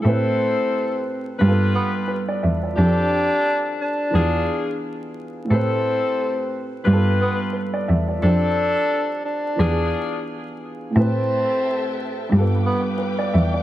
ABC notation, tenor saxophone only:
X:1
M:4/4
L:1/16
Q:"Swing 16ths" 1/4=88
K:Am
V:1 name="Tenor saxophone"
C8 z2 B, z4 z | D6 D6 z4 | C8 z2 B, z4 z | D6 D6 z4 |
C8 z2 B, z4 z |]